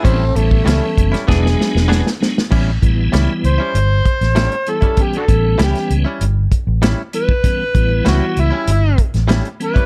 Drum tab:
CC |----------------|x---------------|----------------|----------------|
HH |x-x-x-xx--------|--x-x-x-x-xxxxxx|xxx-xxx-x-x-x-x-|x-x-x-x-x-xxxxxx|
SD |----o--ooooooooo|----o------oo---|----oo------o---|----o------oo---|
BD |o--o--o-o-------|o-o-------o----o|o-o-------o----o|o-o-------o----o|